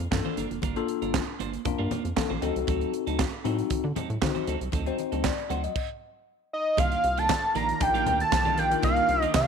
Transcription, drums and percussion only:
0.00 closed hi-hat soft
0.12 kick loud
0.12 snare medium
0.12 clap medium
0.12 high conga medium
0.26 high conga medium
0.37 closed hi-hat medium
0.51 closed hi-hat soft
0.62 kick loud
0.62 closed hi-hat medium
0.62 muted conga medium
0.76 closed hi-hat soft
0.88 closed hi-hat medium
1.02 closed hi-hat soft
1.14 kick loud
1.14 snare loud
1.14 clap medium
1.14 high conga medium
1.40 closed hi-hat medium
1.53 closed hi-hat soft
1.65 kick loud
1.65 closed hi-hat medium
1.65 muted conga medium
1.65 low conga medium
1.91 closed hi-hat medium
1.91 muted conga medium
1.91 low conga medium
2.05 closed hi-hat soft
2.17 kick loud
2.17 snare loud
2.17 clap medium
2.17 high conga medium
2.31 high conga medium
2.42 closed hi-hat medium
2.56 closed hi-hat medium
2.67 kick loud
2.67 closed hi-hat medium
2.67 muted conga medium
2.81 closed hi-hat soft
2.94 closed hi-hat medium
3.07 closed hi-hat soft
3.19 kick loud
3.19 snare loud
3.19 clap medium
3.19 high conga medium
3.45 closed hi-hat medium
3.59 closed hi-hat medium
3.70 kick loud
3.70 closed hi-hat medium
3.70 muted conga soft
3.96 closed hi-hat medium
3.96 muted conga medium
3.96 low conga medium
4.10 closed hi-hat soft
4.22 kick loud
4.22 snare loud
4.22 clap medium
4.22 high conga medium
4.36 closed hi-hat soft
4.36 high conga medium
4.47 closed hi-hat medium
4.61 closed hi-hat medium
4.72 kick loud
4.72 closed hi-hat medium
4.72 muted conga medium
4.86 closed hi-hat soft
4.99 closed hi-hat medium
4.99 muted conga soft
5.12 closed hi-hat soft
5.24 kick loud
5.24 snare loud
5.24 clap loud
5.24 high conga medium
5.38 closed hi-hat soft
5.50 closed hi-hat medium
5.64 closed hi-hat soft
5.76 kick loud
5.76 crash medium
6.77 kick loud
6.77 closed hi-hat medium
6.77 muted conga medium
6.92 closed hi-hat soft
7.04 closed hi-hat medium
7.18 closed hi-hat soft
7.29 kick loud
7.29 snare loud
7.29 clap medium
7.29 high conga medium
7.55 closed hi-hat medium
7.69 closed hi-hat soft
7.81 kick loud
7.81 closed hi-hat loud
7.81 muted conga medium
7.95 closed hi-hat soft
8.06 closed hi-hat medium
8.06 muted conga medium
8.06 low conga medium
8.20 closed hi-hat medium
8.32 kick loud
8.32 snare loud
8.32 clap medium
8.32 high conga medium
8.46 closed hi-hat soft
8.46 high conga medium
8.58 closed hi-hat medium
8.71 closed hi-hat medium
8.83 kick loud
8.83 closed hi-hat medium
8.83 muted conga medium
8.96 closed hi-hat soft
9.09 closed hi-hat medium
9.22 closed hi-hat medium
9.34 kick loud
9.34 snare loud
9.34 clap loud
9.34 high conga medium

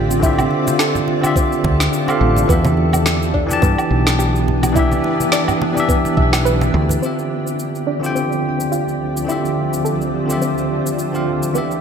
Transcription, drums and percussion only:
0.11 muted conga soft
0.11 shaker medium
0.22 kick loud
0.22 shaker medium
0.39 high conga medium
0.39 low woodblock medium
0.39 shaker soft
0.51 high conga medium
0.67 muted conga medium
0.67 high conga medium
0.67 shaker medium
0.79 snare medium
0.79 shaker medium
0.95 low conga medium
0.95 shaker soft
1.08 muted conga soft
1.23 high conga medium
1.23 low woodblock medium
1.23 shaker medium
1.36 kick loud
1.36 shaker medium
1.52 shaker soft
1.64 kick loud
1.64 muted conga medium
1.80 snare medium
1.80 shaker medium
1.93 shaker medium
2.08 muted conga medium
2.08 low woodblock medium
2.08 shaker soft
2.37 low conga medium
2.37 shaker medium
2.49 kick loud
2.49 shaker medium
2.65 muted conga medium
2.65 high conga medium
2.65 shaker soft
2.77 high conga medium
2.93 high conga medium
2.93 low woodblock medium
2.93 shaker medium
3.06 snare medium
3.06 muted conga medium
3.06 shaker medium
3.22 shaker soft
3.34 kick medium
3.50 high conga medium
3.50 shaker medium
3.62 kick loud
3.62 muted conga medium
3.62 shaker medium
3.78 low woodblock medium
3.78 shaker soft
4.07 snare medium
4.07 muted conga medium
4.07 shaker medium
4.20 shaker medium
4.36 shaker soft
4.48 low conga medium
4.63 muted conga medium
4.63 low woodblock medium
4.63 shaker medium
4.76 kick loud
4.76 shaker medium
4.92 high conga medium
4.92 shaker soft
5.04 muted conga soft
5.04 high conga medium
5.20 high conga medium
5.20 shaker medium
5.32 snare medium
5.32 shaker medium
5.48 low conga medium
5.48 low woodblock medium
5.48 shaker soft
5.62 muted conga medium
5.77 high conga medium
5.77 shaker medium
5.89 kick loud
5.89 shaker medium
6.05 muted conga medium
6.05 shaker soft
6.17 kick loud
6.33 snare medium
6.33 low woodblock medium
6.33 shaker medium
6.46 shaker medium
6.61 muted conga medium
6.61 shaker soft
6.89 low conga medium
6.89 shaker medium
7.03 shaker soft
7.19 shaker soft
7.47 shaker medium
7.59 shaker soft
7.75 shaker soft
8.04 shaker medium
8.16 shaker soft
8.32 shaker soft
8.60 shaker medium
8.72 shaker soft
8.88 shaker soft
9.17 shaker medium
9.29 shaker medium
9.45 shaker soft
9.73 shaker medium
9.86 shaker soft
10.01 shaker soft
10.30 shaker medium
10.42 shaker soft
10.58 shaker soft
10.86 shaker medium
10.99 shaker soft
11.15 shaker soft
11.43 shaker medium
11.55 shaker medium
11.71 shaker soft

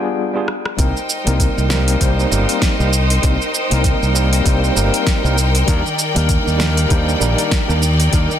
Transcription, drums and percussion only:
0.48 cross-stick medium
0.66 cross-stick medium
0.79 kick loud
0.79 open hi-hat soft
0.79 shaker soft
0.97 shaker soft
1.10 shaker medium
1.27 open hi-hat medium
1.27 shaker soft
1.40 kick loud
1.40 open hi-hat soft
1.40 shaker soft
1.58 shaker soft
1.70 snare medium
1.70 shaker medium
1.88 open hi-hat medium
1.88 shaker soft
2.01 kick medium
2.01 open hi-hat soft
2.01 shaker soft
2.20 shaker soft
2.32 shaker medium
2.49 open hi-hat medium
2.49 shaker soft
2.62 kick loud
2.62 snare medium
2.62 open hi-hat soft
2.62 shaker soft
2.80 shaker soft
2.93 shaker medium
3.10 open hi-hat medium
3.10 shaker soft
3.23 kick loud
3.23 open hi-hat soft
3.23 shaker soft
3.42 shaker soft
3.55 shaker medium
3.71 open hi-hat medium
3.71 shaker soft
3.84 kick loud
3.84 open hi-hat soft
3.84 shaker soft
4.03 shaker soft
4.16 shaker medium
4.33 open hi-hat medium
4.33 shaker soft
4.46 kick loud
4.46 open hi-hat soft
4.46 shaker soft
4.64 shaker soft
4.77 shaker medium
4.94 open hi-hat medium
4.94 shaker soft
5.07 kick loud
5.07 snare medium
5.07 open hi-hat soft
5.07 shaker soft
5.25 shaker soft
5.38 shaker medium
5.55 open hi-hat medium
5.55 shaker soft
5.68 kick loud
5.68 open hi-hat soft
5.68 shaker soft
5.86 shaker soft
5.99 shaker medium
6.16 open hi-hat medium
6.16 shaker soft
6.29 kick loud
6.29 open hi-hat soft
6.29 shaker soft
6.48 shaker soft
6.60 snare medium
6.60 shaker medium
6.77 open hi-hat medium
6.77 shaker soft
6.90 kick loud
6.90 open hi-hat soft
6.90 shaker soft
7.09 shaker soft
7.22 shaker medium
7.38 open hi-hat medium
7.38 shaker soft
7.51 kick loud
7.51 snare medium
7.51 open hi-hat soft
7.51 shaker soft
7.70 shaker soft
7.83 shaker medium
8.00 open hi-hat medium
8.00 shaker soft
8.13 kick loud
8.13 open hi-hat soft
8.13 shaker soft
8.31 shaker soft

